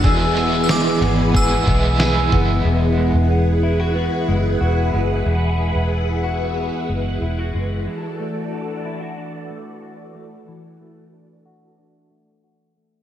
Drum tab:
RD |xxxxxxxx|--------|--------|--------|
TB |--x---x-|--------|--------|--------|
SD |--o---o-|--------|--------|--------|
BD |o---oo-o|--------|--------|--------|

RD |--------|
TB |--------|
SD |--------|
BD |--------|